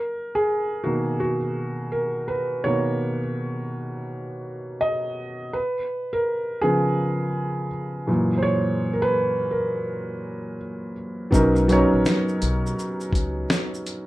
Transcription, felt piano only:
Already playing: A#4
0.35 G#4
0.84 B2 D#3 A#3 F#4
1.20 F#4
1.92 A#4
2.28 B4
2.64 B2 D#3 A#3 C#5
4.81 D#5
5.53 B4
6.13 A#4
6.61 C#3 F3 B3 G#4
8.07 F#2 A#2 E3
8.38 C5
8.43 C#5
8.93 A#4
9.02 B4
9.51 A#4
11.31 F#3 B3 C#4 D#4
11.35 A#4
11.68 F#3 B3 C#4 D#4
11.73 C#5

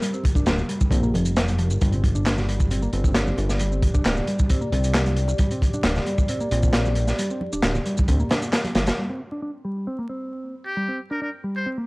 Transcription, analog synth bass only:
0.35 D1
0.47 D1
0.91 A#1
1.14 F1
1.71 G1
1.82 G1
2.93 G1
3.38 G1
3.95 D1
4.05 D1
4.73 C2
5.84 D1
6.52 A#1
7.53 D1
7.63 D1
8.08 D2
8.75 G1

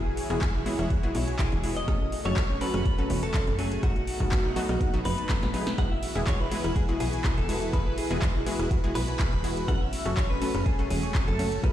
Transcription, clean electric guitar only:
Already playing: G#4
1.39 G#4
1.77 D#5
2.25 C#5
2.61 B4
3.23 A4
3.59 G#4
3.83 F#4
5.05 B4
5.78 F#5
5.91 E5
6.27 C#5
6.40 B4
6.76 G#4
7.00 G#4
7.38 A4
7.73 B4
7.86 B4
7.98 G#4
8.95 B4
9.68 F#5
9.81 E5
10.17 C#5
10.30 B4
10.66 G#4
10.90 G#4
11.27 A4
11.63 B4

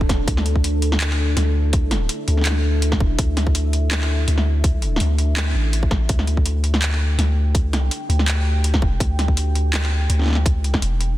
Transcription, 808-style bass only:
Already playing: E1
0.28 D2
1.37 D2
2.28 D2
3.00 E1
3.19 D2
4.28 D2
5.01 D2
5.55 A1
6.09 D2
7.18 D2
7.69 C#2
8.09 D2
8.82 E1
9.00 D2
10.09 D2
10.59 C#2
10.82 E1

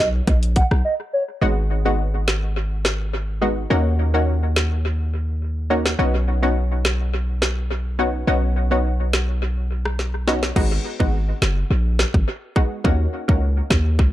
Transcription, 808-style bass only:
0.00 B1
0.27 A#1
0.71 B1
1.42 G#1
3.70 D#2
5.99 B1
8.28 B1
10.56 G#1
11.00 G#1
11.42 F#1
11.71 A#1
12.14 G#1
12.85 D#2
13.29 C#2
13.70 D#2
13.99 C#2

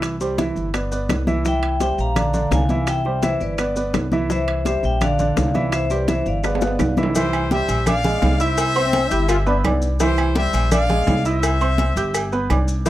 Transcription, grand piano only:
Already playing: E3 E4 E5
0.21 G3 G4 C5
0.38 E3 E4 E5
0.74 B3 B4 D5
0.92 B3 B4 D5
1.27 E3 E4 E5
1.45 E3 E4 E5
1.80 G3 G4 C5
2.16 D3 D4 D5
2.34 D3 D4 D5
2.70 E3 E4 E5
3.05 G3 G4 C5
3.23 E3 E4 E5
3.59 B3 B4 D5
3.76 B3 B4 D5
4.12 E3 E4 E5
4.30 E3 E4 E5
4.65 G3 G4 C5
5.01 D3 D4 D5
5.19 D3 D4 D5
5.54 E3 E4 E5
5.90 G3 G4 C5
6.08 E3 E4 E5
6.44 B3 B4 D5
6.62 B3 B4 D5
6.97 E3 E4 E5
7.16 E3 E4 E5
7.51 G3 G4 G5
7.87 D4 D5 D6
8.04 G#3 G#4 G#5
8.40 E4 E5 E6
8.76 C4 C5 C6
9.11 G4 G5 G6
9.46 B3 B4 B5
9.65 D4 D5 D6
10.00 E3 E4 E5
10.36 G3 G4 G5
10.72 D4 D5 D6
10.89 G#3 G#4 G#5
11.25 E4 E5 E6
11.61 C4 C5 C6
11.97 G4 G5 G6
12.32 B3 B4 B5
12.51 D4 D5 D6
12.86 E3 E4 E5

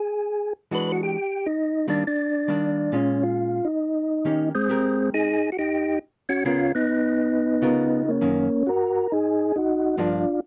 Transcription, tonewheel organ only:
Already playing: G#4
0.75 B4
0.92 F#4
1.03 G4
1.46 D#4
1.90 D4
2.07 D4
2.96 C#4
3.23 F4
3.65 D#4
4.55 G#3 C4
5.14 D#4 G#4
5.52 F#4
5.59 D#4 G4
6.29 C#4 F#4
6.46 C#4 F4
6.75 B3 D#4
8.09 A#3 C#4
8.67 F#4 A#4
9.12 D#4 G#4
9.56 D#4 F#4
9.99 D4 F4

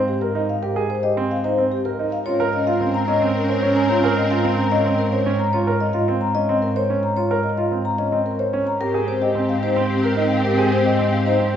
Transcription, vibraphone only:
0.08 G4
0.21 A#4
0.49 F5
0.63 A#4
0.90 C5
1.03 D#5
1.31 F5
1.44 C5
1.72 G4
1.85 A#4
2.12 F5
2.26 C#5
2.53 D#5
2.67 F5
2.94 A#5
3.08 D#5
3.35 A#4
3.49 C#5
3.76 A#5
3.89 C#5
4.17 D#5
4.31 F5
4.58 A#5
4.72 D#5
4.99 A#4
5.12 C#5
5.39 A#5
5.53 C#5
5.80 D#5
5.93 F5
6.21 A#5
6.35 D#5
6.62 A#4
6.76 C#5
7.03 A#5
7.16 C#5
7.43 D#5
7.58 F5
7.85 A#5
7.98 D#5
8.26 A#4
8.39 C#5
8.67 A#5
8.81 A#4
9.08 C5
9.22 D#5
9.49 F5
9.63 C5
9.90 G4
10.04 A#4
10.31 F5
10.45 A#4
10.72 C5
11.13 F5
11.26 C5

